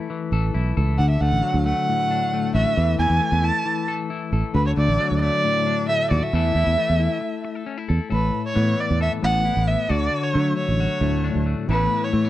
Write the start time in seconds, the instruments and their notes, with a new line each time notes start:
Already playing: clean electric guitar A3 E4
0.10 clean electric guitar E3
0.32 fingered electric bass A1, clean electric guitar A4
0.54 fingered electric bass B1, clean electric guitar E4
0.77 fingered electric bass C#2, clean electric guitar A4
0.98 fingered electric bass D2, clean electric guitar D3, erhu F#5
1.10 erhu E5
1.21 fingered electric bass D2, clean electric guitar A3, erhu F#5
1.32 fingered electric bass A1
1.43 clean electric guitar F#3
1.54 fingered electric bass D2
1.66 clean electric guitar A3, erhu F#5
1.88 clean electric guitar A2
2.11 clean electric guitar D4
2.33 clean electric guitar A3
2.54 fingered electric bass A1, clean electric guitar F#4, erhu E5
2.77 fingered electric bass E2, clean electric guitar E3
2.99 fingered electric bass E2, clean electric guitar E4, erhu G#5
3.10 fingered electric bass E2
3.20 clean electric guitar A3
3.32 fingered electric bass E2
3.43 clean electric guitar E4, erhu A5
3.65 clean electric guitar E3
3.88 clean electric guitar A4
4.10 clean electric guitar E4
4.32 fingered electric bass A1, clean electric guitar A4
4.54 fingered electric bass D2, clean electric guitar D3, erhu B4
4.66 erhu C#5
4.77 fingered electric bass D2, clean electric guitar A3, erhu D5
4.88 fingered electric bass A1
5.00 clean electric guitar F#3
5.11 fingered electric bass D2
5.21 clean electric guitar A3, erhu D5
5.44 clean electric guitar A2
5.66 clean electric guitar D4
5.88 clean electric guitar A3, erhu E5
6.11 fingered electric bass D#2, clean electric guitar F#4, erhu D5
6.22 erhu E5
6.33 fingered electric bass E2, clean electric guitar E3 A3 E4 A4
6.55 fingered electric bass E2, clean electric guitar E4
6.67 fingered electric bass E2
6.78 clean electric guitar A3
6.90 fingered electric bass E2
7.00 clean electric guitar E4
7.21 muted clean electric guitar stroke
7.45 muted clean electric guitar stroke
7.55 clean electric guitar A4
7.66 clean electric guitar C#4
7.78 clean electric guitar E4
7.89 fingered electric bass E2, clean electric guitar A4
8.10 fingered electric bass A1, clean electric guitar A2 A4, erhu B4
8.46 erhu C#5
8.55 fingered electric bass A2, clean electric guitar E3 B3
8.80 erhu D5
8.91 fingered electric bass E2
9.01 clean electric guitar A4, erhu E5
9.22 fingered electric bass A1, clean electric guitar A2 B3, erhu F#5
9.45 clean electric guitar E4
9.57 fingered electric bass A1
9.67 clean electric guitar B3, erhu E5
9.89 fingered electric bass D2, clean electric guitar D3 F#4, erhu D5
10.23 erhu C#5
10.33 fingered electric bass D3, clean electric guitar F#3 A3
10.57 erhu C#5
10.69 fingered electric bass A1
10.80 clean electric guitar F#4
11.01 fingered electric bass D2, clean electric guitar A2 A3
11.24 clean electric guitar D4
11.35 fingered electric bass D2
11.46 clean electric guitar A3
11.68 fingered electric bass A1, clean electric guitar A2 E3 B3 E4 A4, erhu B4
12.04 erhu C#5
12.13 fingered electric bass A2, clean electric guitar E3 A3
12.25 clean electric guitar B3